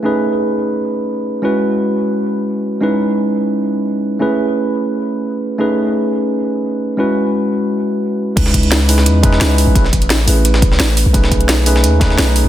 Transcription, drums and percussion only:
8.37 kick loud
8.37 closed hi-hat medium
8.37 crash loud
8.46 snare medium
8.54 kick medium
8.54 closed hi-hat medium
8.63 closed hi-hat soft
8.72 snare loud
8.72 closed hi-hat loud
8.72 closed hi-hat medium
8.89 closed hi-hat medium
8.89 open hi-hat medium
8.98 snare soft
9.06 closed hi-hat medium
9.06 closed hi-hat loud
9.23 kick loud
9.23 closed hi-hat medium
9.32 snare soft
9.41 snare loud
9.41 closed hi-hat medium
9.58 closed hi-hat medium
9.58 open hi-hat medium
9.75 kick loud
9.75 closed hi-hat medium
9.84 snare soft
9.93 kick medium
9.93 closed hi-hat medium
10.02 closed hi-hat soft
10.10 snare loud
10.10 closed hi-hat medium
10.28 closed hi-hat medium
10.28 open hi-hat medium
10.45 closed hi-hat medium
10.54 snare medium
10.62 kick loud
10.62 closed hi-hat medium
10.72 snare soft
10.80 snare loud
10.80 closed hi-hat loud
10.80 closed hi-hat medium
10.97 closed hi-hat medium
10.97 open hi-hat medium
11.14 kick loud
11.14 closed hi-hat medium
11.24 snare medium
11.32 kick medium
11.32 closed hi-hat medium
11.41 closed hi-hat soft
11.49 snare loud
11.49 closed hi-hat loud
11.49 closed hi-hat medium
11.66 closed hi-hat medium
11.66 open hi-hat medium
11.76 snare medium
11.84 closed hi-hat medium
12.01 kick loud
12.01 snare loud
12.01 closed hi-hat medium
12.10 snare soft
12.18 snare loud
12.18 closed hi-hat medium
12.36 closed hi-hat medium
12.36 open hi-hat medium

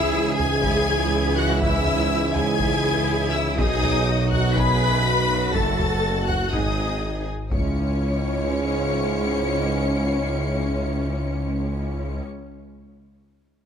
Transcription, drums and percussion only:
0.40 taiko low medium
0.64 taiko medium
1.62 taiko loud
1.87 taiko low medium
2.36 taiko low medium
2.60 taiko medium
3.58 taiko loud
3.83 taiko low medium
4.32 taiko low medium
4.56 taiko medium
5.55 taiko medium
5.80 taiko low medium
6.29 taiko low medium
6.53 taiko medium
7.52 taiko loud

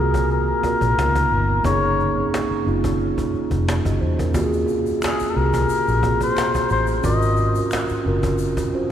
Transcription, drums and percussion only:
0.14 cajon bass medium
0.30 cajon slap soft
0.63 cajon bass medium
0.81 cajon bass medium
0.99 cajon slap medium
1.15 cajon bass medium
1.32 cajon slap soft
1.64 cajon bass medium
1.84 cajon slap soft
2.00 cajon slap soft
2.17 cajon slap soft
2.34 cajon slap medium
2.67 cajon slap soft
2.84 cajon bass medium
3.00 cajon slap soft
3.18 cajon bass medium
3.35 cajon slap soft
3.51 cajon bass medium
3.69 cajon slap loud
3.85 cajon bass medium
3.85 cajon slap soft
4.02 cajon slap soft
4.19 cajon bass medium
4.34 cajon bass medium
4.34 shaker medium
4.53 cajon slap soft
4.53 shaker soft
4.68 cajon slap soft
4.68 shaker soft
4.86 cajon slap soft
4.86 shaker soft
5.02 finger snap medium
5.02 cajon slap medium
5.02 shaker medium
5.20 shaker soft
5.38 cajon slap soft
5.54 cajon bass medium
5.54 shaker soft
5.69 cajon slap soft
5.69 shaker medium
5.88 shaker soft
6.03 cajon bass medium
6.21 cajon bass medium
6.21 shaker soft
6.37 finger snap soft
6.37 cajon slap medium
6.37 shaker medium
6.54 cajon bass medium
6.54 shaker soft
6.70 cajon slap soft
6.70 shaker soft
6.87 shaker soft
7.04 cajon bass loud
7.04 shaker medium
7.22 cajon slap soft
7.22 shaker soft
7.37 cajon slap soft
7.37 shaker soft
7.55 cajon slap soft
7.55 shaker soft
7.71 finger snap medium
7.71 cajon slap medium
7.71 shaker medium
7.89 shaker soft
8.07 cajon slap soft
8.23 cajon bass medium
8.23 shaker soft
8.38 cajon slap soft
8.38 shaker medium
8.57 cajon bass medium
8.57 shaker soft
8.74 cajon slap soft

